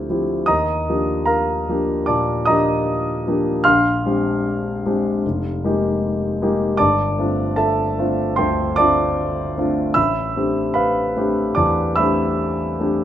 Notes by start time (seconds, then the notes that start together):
Already playing: D2 F3 C4 E4 G4 D5 A5 D6
0.09 F3 C4 E4 G4
0.46 D#2 D#5 A#5 D#6
0.89 F3 A#3 D4 G4
1.26 A#4 F5 A#5
1.69 F3 A#3 D4 G4
2.06 A#2 D5 A5 D6
2.45 F3 A#3 D4 G4 D#5 A#5 D#6
3.27 F3 A#3 D4 G4
3.64 A#1 F5 C6 F6
4.05 G#3 C4 D4 G4
4.85 G#3 C4 D4 G4
5.26 F1
5.64 G#3 A#3 D#4 G4
6.42 G#3 A#3 D#4 G4
6.77 G1 D5 A5 D6
7.18 A3 C4 D4 F4
7.56 A4 E5 A5
7.99 A3 C4 D4 F4
8.36 D2 C5 G5 C6
8.76 A3 C4 D4 F4 D5 A5 D6
9.58 A3 C4 D4 F4
9.94 A1 E5 B5 E6
10.36 A3 C4 D4 G4
10.74 B4 F5 B5
11.16 A3 C4 D4 G4
11.55 E2 D5 A5 D6
11.96 A3 C4 D4 E5 B5 E6
12.00 G4
12.80 A3 C4 D4 G4